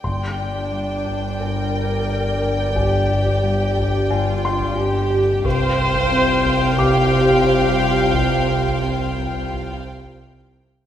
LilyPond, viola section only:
\new Staff \with { instrumentName = "Viola section" } { \time 4/4 \key c \minor \tempo 4 = 89 r8 d'4. bes'2 | g'2 f'4 g'4 | c''2 g'2 | g'4 f'2~ f'8 r8 | }